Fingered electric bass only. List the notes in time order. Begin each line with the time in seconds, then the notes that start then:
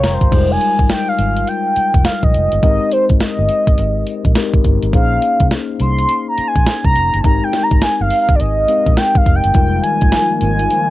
0.04 F1
0.22 G1
0.32 F1
0.79 G#1
1.19 G#1
1.77 muted fingered electric bass stroke
1.94 F1
2.23 A#1
2.34 F1
2.53 G1
2.63 G#1
3.10 G#1
3.39 G1
3.68 G#1
3.79 G#1
4.25 A#1
4.54 G#1
4.65 G1
4.83 G#1
4.93 A#1
5.41 C2
5.80 C2
6.38 muted fingered electric bass stroke
6.56 A#1
6.85 C2
6.96 F1
7.14 G1
7.24 G#1
7.72 G#1
8.00 G1
8.29 G#1
8.40 G#1
8.87 A#1
9.16 G#1
9.27 F1
9.45 G1
9.55 F1
10.02 G#1
10.42 G#1